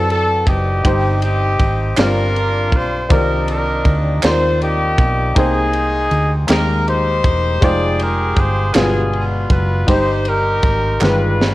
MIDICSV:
0, 0, Header, 1, 5, 480
1, 0, Start_track
1, 0, Key_signature, -3, "minor"
1, 0, Tempo, 752823
1, 541, Time_signature, 6, 3, 24, 8
1, 7360, End_track
2, 0, Start_track
2, 0, Title_t, "Horn section"
2, 0, Program_c, 0, 61
2, 75, Note_on_c, 0, 69, 107
2, 292, Note_off_c, 0, 69, 0
2, 308, Note_on_c, 0, 60, 74
2, 309, Note_on_c, 0, 67, 92
2, 311, Note_on_c, 0, 63, 73
2, 780, Note_off_c, 0, 60, 0
2, 781, Note_off_c, 0, 63, 0
2, 782, Note_off_c, 0, 67, 0
2, 788, Note_on_c, 0, 60, 80
2, 789, Note_on_c, 0, 63, 76
2, 789, Note_on_c, 0, 67, 110
2, 1238, Note_off_c, 0, 60, 0
2, 1238, Note_off_c, 0, 63, 0
2, 1239, Note_off_c, 0, 67, 0
2, 1263, Note_on_c, 0, 65, 78
2, 1265, Note_on_c, 0, 62, 79
2, 1265, Note_on_c, 0, 70, 111
2, 1742, Note_off_c, 0, 70, 0
2, 1744, Note_on_c, 0, 72, 96
2, 1955, Note_off_c, 0, 65, 0
2, 1956, Note_off_c, 0, 62, 0
2, 1982, Note_off_c, 0, 72, 0
2, 1987, Note_on_c, 0, 62, 83
2, 1987, Note_on_c, 0, 70, 99
2, 1988, Note_on_c, 0, 63, 78
2, 2206, Note_off_c, 0, 70, 0
2, 2226, Note_on_c, 0, 70, 105
2, 2509, Note_off_c, 0, 70, 0
2, 2676, Note_off_c, 0, 62, 0
2, 2677, Note_off_c, 0, 63, 0
2, 2707, Note_on_c, 0, 72, 101
2, 2926, Note_off_c, 0, 72, 0
2, 2942, Note_on_c, 0, 67, 112
2, 2945, Note_on_c, 0, 58, 74
2, 2945, Note_on_c, 0, 63, 69
2, 3394, Note_off_c, 0, 67, 0
2, 3395, Note_off_c, 0, 58, 0
2, 3396, Note_off_c, 0, 63, 0
2, 3426, Note_on_c, 0, 68, 109
2, 3429, Note_on_c, 0, 63, 82
2, 4036, Note_off_c, 0, 63, 0
2, 4036, Note_off_c, 0, 68, 0
2, 4144, Note_on_c, 0, 70, 104
2, 4364, Note_off_c, 0, 70, 0
2, 4385, Note_on_c, 0, 63, 78
2, 4386, Note_on_c, 0, 72, 111
2, 4388, Note_on_c, 0, 67, 78
2, 4835, Note_off_c, 0, 63, 0
2, 4837, Note_off_c, 0, 67, 0
2, 4862, Note_off_c, 0, 72, 0
2, 4865, Note_on_c, 0, 74, 117
2, 4872, Note_on_c, 0, 67, 88
2, 4872, Note_on_c, 0, 68, 92
2, 5101, Note_off_c, 0, 74, 0
2, 5109, Note_on_c, 0, 70, 97
2, 5343, Note_off_c, 0, 70, 0
2, 5346, Note_on_c, 0, 72, 96
2, 5559, Note_off_c, 0, 67, 0
2, 5559, Note_off_c, 0, 68, 0
2, 5582, Note_off_c, 0, 72, 0
2, 5583, Note_on_c, 0, 68, 102
2, 5590, Note_on_c, 0, 59, 76
2, 5590, Note_on_c, 0, 65, 76
2, 5889, Note_off_c, 0, 68, 0
2, 6062, Note_on_c, 0, 71, 92
2, 6279, Note_off_c, 0, 59, 0
2, 6279, Note_off_c, 0, 65, 0
2, 6284, Note_off_c, 0, 71, 0
2, 6309, Note_on_c, 0, 72, 105
2, 6310, Note_on_c, 0, 63, 82
2, 6310, Note_on_c, 0, 67, 75
2, 6544, Note_off_c, 0, 72, 0
2, 6545, Note_off_c, 0, 63, 0
2, 6545, Note_off_c, 0, 67, 0
2, 6551, Note_on_c, 0, 70, 109
2, 6553, Note_on_c, 0, 63, 77
2, 6553, Note_on_c, 0, 67, 82
2, 7001, Note_off_c, 0, 63, 0
2, 7001, Note_off_c, 0, 67, 0
2, 7026, Note_off_c, 0, 70, 0
2, 7032, Note_on_c, 0, 71, 90
2, 7035, Note_on_c, 0, 62, 70
2, 7037, Note_on_c, 0, 65, 61
2, 7360, Note_off_c, 0, 62, 0
2, 7360, Note_off_c, 0, 65, 0
2, 7360, Note_off_c, 0, 71, 0
2, 7360, End_track
3, 0, Start_track
3, 0, Title_t, "Grand piano"
3, 0, Program_c, 1, 0
3, 0, Control_c, 1, 64, 127
3, 0, Note_on_c, 1, 50, 75
3, 0, Note_on_c, 1, 60, 75
3, 0, Note_on_c, 1, 64, 70
3, 0, Note_on_c, 1, 66, 68
3, 0, Note_on_c, 1, 71, 70
3, 0, Note_on_c, 1, 74, 83
3, 289, Note_off_c, 1, 60, 0
3, 290, Note_off_c, 1, 64, 0
3, 293, Note_off_c, 1, 66, 0
3, 295, Note_off_c, 1, 71, 0
3, 297, Note_off_c, 1, 74, 0
3, 534, Note_on_c, 1, 63, 78
3, 542, Note_on_c, 1, 43, 61
3, 544, Note_on_c, 1, 67, 85
3, 549, Control_c, 1, 64, 0
3, 551, Note_off_c, 1, 50, 0
3, 551, Note_on_c, 1, 72, 90
3, 677, Control_c, 1, 64, 127
3, 1007, Note_off_c, 1, 63, 0
3, 1012, Note_off_c, 1, 67, 0
3, 1016, Note_off_c, 1, 72, 0
3, 1235, Note_off_c, 1, 43, 0
3, 1254, Note_on_c, 1, 60, 76
3, 1256, Note_on_c, 1, 62, 68
3, 1260, Note_on_c, 1, 43, 67
3, 1261, Note_on_c, 1, 65, 70
3, 1266, Note_on_c, 1, 67, 69
3, 1268, Note_on_c, 1, 74, 85
3, 1269, Control_c, 1, 64, 0
3, 1393, Control_c, 1, 64, 127
3, 1726, Note_off_c, 1, 60, 0
3, 1728, Note_off_c, 1, 62, 0
3, 1730, Note_off_c, 1, 65, 0
3, 1732, Note_off_c, 1, 67, 0
3, 1734, Note_off_c, 1, 74, 0
3, 1953, Note_off_c, 1, 43, 0
3, 1971, Note_on_c, 1, 60, 88
3, 1973, Note_on_c, 1, 51, 74
3, 1976, Note_on_c, 1, 48, 67
3, 1979, Note_on_c, 1, 65, 72
3, 1983, Note_on_c, 1, 70, 80
3, 1984, Note_on_c, 1, 74, 92
3, 1988, Control_c, 1, 64, 0
3, 2110, Control_c, 1, 64, 127
3, 2444, Note_off_c, 1, 60, 0
3, 2446, Note_off_c, 1, 51, 0
3, 2449, Note_off_c, 1, 65, 0
3, 2451, Note_off_c, 1, 70, 0
3, 2451, Note_off_c, 1, 74, 0
3, 2671, Note_off_c, 1, 48, 0
3, 2694, Note_on_c, 1, 60, 68
3, 2697, Note_on_c, 1, 63, 75
3, 2700, Note_on_c, 1, 65, 74
3, 2705, Note_on_c, 1, 70, 68
3, 2707, Note_on_c, 1, 74, 82
3, 3166, Note_off_c, 1, 60, 0
3, 3168, Note_off_c, 1, 63, 0
3, 3169, Note_off_c, 1, 65, 0
3, 3172, Note_off_c, 1, 70, 0
3, 3173, Note_off_c, 1, 74, 0
3, 3409, Note_on_c, 1, 58, 84
3, 3413, Note_on_c, 1, 63, 78
3, 3415, Note_on_c, 1, 48, 61
3, 3417, Note_on_c, 1, 79, 86
3, 3420, Note_on_c, 1, 68, 72
3, 3426, Control_c, 1, 64, 0
3, 3426, Note_on_c, 1, 72, 90
3, 3527, Control_c, 1, 64, 127
3, 3883, Note_off_c, 1, 58, 0
3, 3885, Note_off_c, 1, 63, 0
3, 3887, Note_off_c, 1, 79, 0
3, 3889, Note_off_c, 1, 68, 0
3, 3892, Note_off_c, 1, 72, 0
3, 4110, Note_off_c, 1, 48, 0
3, 4127, Note_on_c, 1, 58, 77
3, 4132, Note_on_c, 1, 63, 74
3, 4136, Note_on_c, 1, 67, 68
3, 4141, Note_on_c, 1, 56, 76
3, 4141, Note_on_c, 1, 70, 92
3, 4602, Note_off_c, 1, 58, 0
3, 4605, Note_off_c, 1, 63, 0
3, 4607, Note_off_c, 1, 67, 0
3, 4609, Note_off_c, 1, 56, 0
3, 4609, Note_off_c, 1, 70, 0
3, 4852, Note_on_c, 1, 56, 90
3, 4859, Note_on_c, 1, 63, 85
3, 4862, Note_on_c, 1, 65, 77
3, 4863, Control_c, 1, 64, 0
3, 4863, Note_on_c, 1, 79, 73
3, 4868, Note_on_c, 1, 72, 108
3, 4979, Control_c, 1, 64, 127
3, 5325, Note_off_c, 1, 56, 0
3, 5329, Note_off_c, 1, 63, 0
3, 5330, Note_off_c, 1, 65, 0
3, 5331, Note_off_c, 1, 79, 0
3, 5333, Note_off_c, 1, 72, 0
3, 5574, Note_on_c, 1, 56, 76
3, 5577, Note_on_c, 1, 62, 70
3, 5581, Note_on_c, 1, 65, 73
3, 5582, Note_on_c, 1, 47, 67
3, 5585, Control_c, 1, 64, 0
3, 5585, Note_on_c, 1, 55, 69
3, 5590, Note_on_c, 1, 71, 87
3, 5710, Control_c, 1, 64, 127
3, 6046, Note_off_c, 1, 56, 0
3, 6048, Note_off_c, 1, 62, 0
3, 6050, Note_off_c, 1, 65, 0
3, 6052, Note_off_c, 1, 55, 0
3, 6055, Note_off_c, 1, 71, 0
3, 6275, Note_off_c, 1, 47, 0
3, 6294, Note_on_c, 1, 63, 88
3, 6300, Note_on_c, 1, 43, 67
3, 6301, Note_on_c, 1, 67, 75
3, 6307, Control_c, 1, 64, 0
3, 6308, Note_on_c, 1, 72, 90
3, 6419, Control_c, 1, 64, 127
3, 6767, Note_off_c, 1, 63, 0
3, 6771, Note_off_c, 1, 67, 0
3, 6774, Note_off_c, 1, 72, 0
3, 6995, Note_off_c, 1, 43, 0
3, 7014, Note_on_c, 1, 56, 78
3, 7018, Note_on_c, 1, 51, 72
3, 7022, Note_on_c, 1, 43, 71
3, 7022, Note_on_c, 1, 65, 61
3, 7026, Note_on_c, 1, 67, 67
3, 7029, Control_c, 1, 64, 0
3, 7029, Note_on_c, 1, 71, 81
3, 7134, Control_c, 1, 64, 127
3, 7360, Note_off_c, 1, 43, 0
3, 7360, Note_off_c, 1, 51, 0
3, 7360, Note_off_c, 1, 56, 0
3, 7360, Note_off_c, 1, 65, 0
3, 7360, Note_off_c, 1, 67, 0
3, 7360, Note_off_c, 1, 71, 0
3, 7360, End_track
4, 0, Start_track
4, 0, Title_t, "Fingered electric bass"
4, 0, Program_c, 2, 33
4, 0, Note_on_c, 2, 42, 84
4, 278, Note_off_c, 2, 42, 0
4, 300, Note_on_c, 2, 30, 97
4, 521, Note_off_c, 2, 30, 0
4, 542, Note_on_c, 2, 31, 117
4, 995, Note_off_c, 2, 31, 0
4, 1019, Note_on_c, 2, 32, 91
4, 1240, Note_off_c, 2, 32, 0
4, 1259, Note_on_c, 2, 31, 91
4, 1737, Note_off_c, 2, 31, 0
4, 1737, Note_on_c, 2, 35, 100
4, 1959, Note_off_c, 2, 35, 0
4, 1978, Note_on_c, 2, 36, 104
4, 2432, Note_off_c, 2, 36, 0
4, 2457, Note_on_c, 2, 38, 104
4, 2678, Note_off_c, 2, 38, 0
4, 2700, Note_on_c, 2, 39, 81
4, 3153, Note_off_c, 2, 39, 0
4, 3175, Note_on_c, 2, 35, 105
4, 3397, Note_off_c, 2, 35, 0
4, 3418, Note_on_c, 2, 36, 99
4, 3872, Note_off_c, 2, 36, 0
4, 3897, Note_on_c, 2, 38, 99
4, 4118, Note_off_c, 2, 38, 0
4, 4139, Note_on_c, 2, 39, 90
4, 4593, Note_off_c, 2, 39, 0
4, 4616, Note_on_c, 2, 28, 98
4, 4837, Note_off_c, 2, 28, 0
4, 4859, Note_on_c, 2, 29, 114
4, 5313, Note_off_c, 2, 29, 0
4, 5338, Note_on_c, 2, 31, 84
4, 5558, Note_off_c, 2, 31, 0
4, 5581, Note_on_c, 2, 31, 98
4, 6034, Note_off_c, 2, 31, 0
4, 6057, Note_on_c, 2, 30, 122
4, 6279, Note_off_c, 2, 30, 0
4, 6303, Note_on_c, 2, 31, 108
4, 6756, Note_off_c, 2, 31, 0
4, 6781, Note_on_c, 2, 32, 92
4, 7001, Note_off_c, 2, 32, 0
4, 7022, Note_on_c, 2, 31, 93
4, 7360, Note_off_c, 2, 31, 0
4, 7360, End_track
5, 0, Start_track
5, 0, Title_t, "Drums"
5, 65, Note_on_c, 9, 51, 39
5, 129, Note_off_c, 9, 51, 0
5, 299, Note_on_c, 9, 36, 93
5, 302, Note_on_c, 9, 51, 43
5, 362, Note_off_c, 9, 36, 0
5, 366, Note_off_c, 9, 51, 0
5, 540, Note_on_c, 9, 36, 101
5, 541, Note_on_c, 9, 51, 72
5, 604, Note_off_c, 9, 36, 0
5, 605, Note_off_c, 9, 51, 0
5, 777, Note_on_c, 9, 51, 45
5, 841, Note_off_c, 9, 51, 0
5, 1017, Note_on_c, 9, 36, 87
5, 1018, Note_on_c, 9, 51, 45
5, 1081, Note_off_c, 9, 36, 0
5, 1082, Note_off_c, 9, 51, 0
5, 1257, Note_on_c, 9, 39, 108
5, 1257, Note_on_c, 9, 51, 90
5, 1270, Note_on_c, 9, 38, 126
5, 1320, Note_off_c, 9, 51, 0
5, 1321, Note_off_c, 9, 39, 0
5, 1334, Note_off_c, 9, 38, 0
5, 1507, Note_on_c, 9, 51, 35
5, 1571, Note_off_c, 9, 51, 0
5, 1737, Note_on_c, 9, 36, 96
5, 1740, Note_on_c, 9, 51, 48
5, 1800, Note_off_c, 9, 36, 0
5, 1804, Note_off_c, 9, 51, 0
5, 1978, Note_on_c, 9, 36, 126
5, 1982, Note_on_c, 9, 51, 59
5, 2042, Note_off_c, 9, 36, 0
5, 2046, Note_off_c, 9, 51, 0
5, 2217, Note_on_c, 9, 51, 45
5, 2281, Note_off_c, 9, 51, 0
5, 2454, Note_on_c, 9, 51, 45
5, 2455, Note_on_c, 9, 36, 86
5, 2518, Note_off_c, 9, 36, 0
5, 2518, Note_off_c, 9, 51, 0
5, 2693, Note_on_c, 9, 51, 91
5, 2695, Note_on_c, 9, 39, 114
5, 2707, Note_on_c, 9, 38, 123
5, 2757, Note_off_c, 9, 51, 0
5, 2759, Note_off_c, 9, 39, 0
5, 2771, Note_off_c, 9, 38, 0
5, 2943, Note_on_c, 9, 51, 38
5, 3006, Note_off_c, 9, 51, 0
5, 3175, Note_on_c, 9, 36, 103
5, 3177, Note_on_c, 9, 51, 42
5, 3238, Note_off_c, 9, 36, 0
5, 3240, Note_off_c, 9, 51, 0
5, 3416, Note_on_c, 9, 36, 124
5, 3417, Note_on_c, 9, 51, 69
5, 3480, Note_off_c, 9, 36, 0
5, 3481, Note_off_c, 9, 51, 0
5, 3654, Note_on_c, 9, 51, 42
5, 3717, Note_off_c, 9, 51, 0
5, 3896, Note_on_c, 9, 51, 44
5, 3959, Note_off_c, 9, 51, 0
5, 4134, Note_on_c, 9, 51, 85
5, 4135, Note_on_c, 9, 39, 111
5, 4148, Note_on_c, 9, 38, 121
5, 4197, Note_off_c, 9, 51, 0
5, 4199, Note_off_c, 9, 39, 0
5, 4211, Note_off_c, 9, 38, 0
5, 4385, Note_on_c, 9, 51, 36
5, 4448, Note_off_c, 9, 51, 0
5, 4617, Note_on_c, 9, 36, 98
5, 4622, Note_on_c, 9, 51, 47
5, 4681, Note_off_c, 9, 36, 0
5, 4686, Note_off_c, 9, 51, 0
5, 4859, Note_on_c, 9, 36, 113
5, 4862, Note_on_c, 9, 51, 66
5, 4923, Note_off_c, 9, 36, 0
5, 4926, Note_off_c, 9, 51, 0
5, 5098, Note_on_c, 9, 51, 51
5, 5161, Note_off_c, 9, 51, 0
5, 5335, Note_on_c, 9, 36, 90
5, 5335, Note_on_c, 9, 51, 43
5, 5399, Note_off_c, 9, 36, 0
5, 5399, Note_off_c, 9, 51, 0
5, 5574, Note_on_c, 9, 51, 80
5, 5577, Note_on_c, 9, 39, 115
5, 5588, Note_on_c, 9, 38, 113
5, 5638, Note_off_c, 9, 51, 0
5, 5640, Note_off_c, 9, 39, 0
5, 5652, Note_off_c, 9, 38, 0
5, 5824, Note_on_c, 9, 51, 41
5, 5888, Note_off_c, 9, 51, 0
5, 6058, Note_on_c, 9, 36, 100
5, 6060, Note_on_c, 9, 51, 42
5, 6121, Note_off_c, 9, 36, 0
5, 6124, Note_off_c, 9, 51, 0
5, 6300, Note_on_c, 9, 36, 110
5, 6301, Note_on_c, 9, 51, 71
5, 6364, Note_off_c, 9, 36, 0
5, 6365, Note_off_c, 9, 51, 0
5, 6536, Note_on_c, 9, 51, 45
5, 6600, Note_off_c, 9, 51, 0
5, 6776, Note_on_c, 9, 51, 43
5, 6778, Note_on_c, 9, 36, 86
5, 6839, Note_off_c, 9, 51, 0
5, 6842, Note_off_c, 9, 36, 0
5, 7017, Note_on_c, 9, 39, 110
5, 7034, Note_on_c, 9, 38, 63
5, 7080, Note_off_c, 9, 39, 0
5, 7098, Note_off_c, 9, 38, 0
5, 7276, Note_on_c, 9, 38, 76
5, 7340, Note_off_c, 9, 38, 0
5, 7360, End_track
0, 0, End_of_file